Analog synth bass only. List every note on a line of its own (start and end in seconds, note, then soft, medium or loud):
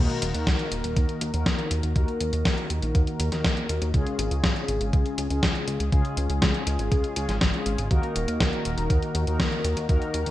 0.22 0.33 D#1 medium
0.35 0.45 D#2 medium
0.47 0.58 C#2 loud
0.72 0.83 D#1 medium
0.84 0.95 D#1 medium
0.96 1.07 D#2 loud
1.21 1.32 D#2 medium
1.34 1.45 D#2 medium
1.46 1.57 D#2 loud
1.71 1.82 D#2 medium
1.83 1.94 D#2 medium
1.96 2.07 D#2 loud
2.21 2.31 D#2 medium
2.33 2.44 D#2 medium
2.45 2.56 D#2 loud
2.70 2.81 D#2 medium
2.83 2.93 A#1 medium
2.95 3.06 D#2 loud
3.20 3.31 D#2 medium
3.32 3.43 D#2 medium
3.44 3.55 D#2 loud
3.69 3.80 D#2 medium
3.82 3.93 D#2 medium
3.94 4.05 C#2 loud
4.19 4.30 G#1 medium
4.31 4.42 C#2 medium
4.44 4.55 G#1 loud
4.68 4.79 G#1 medium
4.81 4.92 G#1 medium
4.93 5.04 C#2 loud
5.18 5.29 C#2 loud
5.30 5.41 C#2 medium
5.43 5.54 C#2 loud
5.68 5.79 C#2 medium
5.80 5.91 C#2 medium
5.92 6.03 C#2 loud
6.17 6.28 C#2 medium
6.30 6.41 C#2 medium
6.42 6.53 C#2 loud
6.67 6.78 C#2 medium
6.79 6.90 G#1 medium
6.92 7.03 C#2 loud
7.16 7.27 C#2 medium
7.29 7.40 G#1 medium
7.41 7.52 G#1 loud
7.66 7.77 G#1 medium
7.78 7.89 G#1 medium
7.91 8.02 D#2 loud
8.16 8.27 D#1 medium
8.28 8.39 D#2 medium
8.40 8.51 C#2 loud
8.65 8.76 D#1 medium
8.78 8.88 D#1 medium
8.90 9.01 D#2 loud
9.15 9.26 D#2 loud
9.27 9.38 D#2 medium
9.40 9.50 D#2 loud
9.64 9.75 D#2 medium
9.77 9.88 D#2 medium
9.89 10.00 D#2 medium
10.14 10.25 D#2 medium
10.26 10.31 D#2 medium